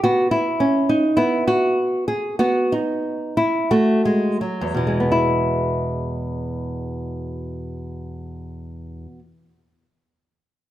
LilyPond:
\new Staff \with { instrumentName = "Nylon-string guitar" } { \time 4/4 \key e \major \tempo 4 = 43 << { fis'16 e'8 dis'16 e'16 fis'8 gis'16 fis'16 dis'8 e'16 fis'4 | <e, b, gis b e'>1 | } \\ { b8 cis'8 b4 b4 a16 gis16 fis16 e16 | r1 | } >> }